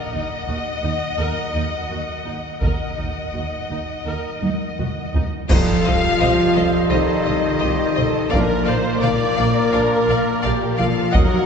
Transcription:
Already playing: F#3 D#4 D#5 F#5
0.13 D#2 D#4
0.47 D#2 F#4
0.82 D#2 D#4
1.18 D#2 A#4
1.54 D#2 D#4
1.89 D#2 F#4
2.25 D#2 D#4
2.60 D#2 F#3 D#4 A#4 D#5 F#5, taiko
2.97 D#2 D#4
3.34 D#2 F#4
3.69 D#2 D#4
4.05 D#2 A#4
4.42 D#2 D#4, taiko high
4.78 D#2 F#4, taiko mid
5.14 D#2 D#4, taiko low
5.48 C2 F3 G3 D#4 F4 G4 A4 C5 D#5 F5, concert bass drum, taiko, crash, impact
5.84 C2 C5 D#5
6.20 C2 G4 C5 D#5, taiko mid
6.55 C2 A4 C5 D#5
6.90 C2 D#3 G3 D#4 C5 D#5
7.26 C2 C5 D#5
7.59 C2 G4 C5 D#5
7.95 C2 A4 C5 D#5, taiko mid
8.29 A#2 F3 A#3 D4 F4 A#4 D5 F5, taiko
8.34 A#1
8.65 A#1 C5 D5 F5
9.01 A#1 D5 F5, taiko mid
9.36 A#1 D5 F5
9.72 A#1 F3 D4 A#4 D5 F5
10.08 A#1 D5 F5
10.42 A#1 G4 D5 F5
10.77 A#1 F3 F4 A4 D5 F5, taiko mid
11.11 D#2 F#3 A#3 D#4 F#4 A#4 D#5 F#5, taiko

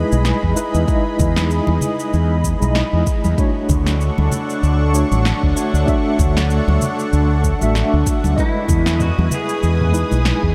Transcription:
Already playing: G#3 D#4 E4 G#4 B4 D#5 B5
0.12 B1, high conga, cabasa
0.25 snare, cabasa
0.43 E2, kick
0.55 G#3 D#4 E4 B4, cabasa
0.75 E2, cabasa
0.85 G#3 D#4 E4 D#5, kick, cabasa
1.19 E2, kick, low conga, cabasa
1.36 snare, cabasa
1.51 cabasa
1.67 E2, high conga
1.81 low conga, cabasa
2.00 cabasa
2.13 E2, cabasa
2.44 kick, cabasa
2.60 B1 G#3 D#4 E4 D#5, high conga, cabasa
2.75 snare, cabasa
2.93 E2
3.07 kick, cabasa
3.24 E2, high conga, cabasa
3.36 A3 D4 F#4 A4 F#5 C#6, kick, cabasa
3.40 C#5
3.69 D2, kick, low conga, cabasa
3.86 snare, cabasa
4.01 cabasa
4.18 D2, high conga
4.32 low conga, cabasa
4.50 cabasa
4.63 D2, cabasa
4.92 A3 D4 F#4 C#5, cabasa
5.12 A1, high conga, cabasa
5.25 snare, cabasa
5.43 D2, kick
5.55 A3 D4 F#4 C#5, cabasa
5.74 D2, cabasa
5.85 A3 D4 F#4 E5, kick, cabasa
6.19 D2, kick, low conga, cabasa
6.37 snare, cabasa
6.50 cabasa
6.68 D2, high conga
6.81 low conga, cabasa
6.99 cabasa
7.13 D2, cabasa
7.44 kick, cabasa
7.59 A1 A3 D4 F#4 E5, high conga, cabasa
7.75 snare, cabasa
7.94 D2
8.07 kick, cabasa
8.24 D2, high conga, cabasa
8.35 G#3 E4 B4 D#5 G#5 D#6, kick, cabasa
8.40 E4
8.68 E2, kick, low conga, cabasa
8.86 snare, cabasa
9.00 F#4, mid tom, cabasa
9.18 E2, high conga
9.31 G#4, low conga, cabasa
9.49 cabasa
9.63 E2, cabasa
9.80 mid tom
9.92 G#3 D#4 E4 B4, cabasa
10.11 B1, high conga, cabasa
10.25 snare, cabasa
10.43 E2, kick

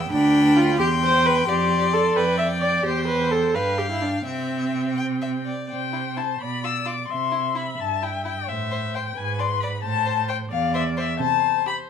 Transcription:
0.00 G5 E6
0.11 D2 D4 G5 B5
0.56 F4
0.78 E2 G4 G5 C6
1.04 C5
1.26 B4
1.47 F2 G4 D5 C6
1.94 A4
2.16 F2 B4 D5 G5
2.38 E5
2.61 D5
2.83 E2 G4 C5 G5
3.08 B4
3.31 A4
3.55 G2 B4 F5 G5
3.78 G4
3.91 E4
4.02 D4
4.25 C3 C4 E5 G5
4.97 G5
5.22 E5
5.46 D5
5.69 C3 C5 G5
5.93 E4
6.17 E4 A5
6.41 B2 D5 B5
6.64 F4 E6
6.86 F4 D6
7.09 C3 E5 C6
7.31 E4
7.55 E4 B5
7.79 G2 A5
8.02 E4 G5
8.25 E4 G5
8.48 A2 C5 E5
8.71 C5
8.94 C5 G5
9.16 G#2 B4 G#5
9.39 D5 C6
9.60 D5 B5
9.83 A2 C5 A5
10.06 C5
10.28 C5 G5
10.51 E2 D5 F5
10.74 C5 E5
10.97 C5 E5
11.19 C3 C5 A5
11.66 G4 B5

